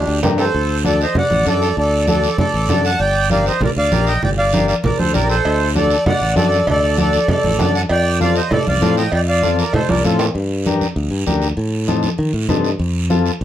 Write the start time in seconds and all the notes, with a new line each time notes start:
Already playing: D4 G4
0.07 D2
0.23 G2 D4 G4 A#4, high conga, low conga, low timbale, short guiro
0.38 A4 C5, low timbale, short guiro
0.54 D2, long guiro
0.85 D4 F#4 A4 D5, high conga, short guiro
1.01 C5 D#5, short guiro
1.15 F#2 D5 F#5, low conga, long guiro
1.30 A1, high conga
1.45 F#2 D4 F#4 A4 D5, high conga, short guiro
1.62 short guiro
1.77 D2 A4 D5, long guiro
2.07 D4 F#4 A4 D5, high conga, short guiro
2.24 short guiro
2.38 F#2 A4 D5, low conga, long guiro
2.54 A1
2.69 F#2 D4 F#4 A4, high conga, low conga, short guiro
2.85 F#5 A5, short guiro
3.00 G1 D5 G5, long guiro
3.30 D4 G4 A#4 D5 F5, high conga, short guiro
3.46 C5 D#5, short guiro
3.60 A#1 A#4 D5, low conga, long guiro
3.76 D2 D5 F5
3.92 A#1 D4 G4 A#4, high conga, short guiro
4.07 D#5 G5, short guiro
4.22 G1 D5 G5, low conga, long guiro
4.38 D5 F5
4.53 D4 G4 A#4, high conga, short guiro
4.68 D5 F5, short guiro
4.84 A#1 A#4 D5, low conga, long guiro
4.98 D2 A4 C5, high conga
5.13 A#1 D4 G4 A#4 D5, high conga, short guiro
5.29 A4 C5, short guiro
5.45 D2, cowbell, long guiro
5.75 D4 F#4 A4 D5, high conga, short guiro
5.90 short guiro
6.06 F#2 D5 F#5, cowbell, low conga, long guiro
6.21 A1
6.35 F#2 D4 F#4 A4 D5, high conga, low timbale, short guiro
6.52 short guiro
6.67 D2 A4 D5, cowbell, low conga, long guiro
6.98 D4 F#4 A4 D5, high conga, short guiro
7.13 short guiro
7.28 F#2 A4 D5, cowbell, low conga, long guiro
7.44 A1, high conga
7.58 F#2 D4 F#4 A4, high conga, low conga, low timbale, short guiro
7.75 F#5 A5, short guiro
7.89 F2 D5 G5, cowbell, long guiro
8.20 C4 F4 A4 D5 F5, high conga, short guiro
8.36 C5 D#5, short guiro
8.51 A2 A4 D5, cowbell, low conga, long guiro
8.67 C2 D5 F5, high conga
8.81 A2 C4 F4 A4, high conga, short guiro
8.97 D#5 G5, short guiro
9.12 F2 D5 G5, cowbell, long guiro
9.28 D5 F5
9.42 C4 F4 A4, high conga, short guiro
9.58 A#4 D5, short guiro
9.73 A2 A4 C5, cowbell, low conga, long guiro
9.89 C2 A#4 D5, high conga, high timbale
10.04 A2 C4 F4 A4, high conga, short guiro
10.19 low timbale, short guiro
10.35 G2, long guiro
10.66 D4 G4 A#4, high conga, short guiro
10.81 high conga, short guiro
10.96 D2, long guiro
11.11 G2
11.26 D2 D4 G4 A#4, high conga, short guiro
11.42 short guiro
11.57 A2, long guiro
11.88 C4 D#4 A4, high conga, short guiro
12.03 high conga, short guiro
12.18 D#3, long guiro
12.33 A2
12.48 G2 C4 D#4 A4, high conga, low conga, short guiro
12.64 short guiro
12.79 F2, long guiro
13.10 C4 F4 A4, high conga, short guiro
13.26 short guiro
13.41 C2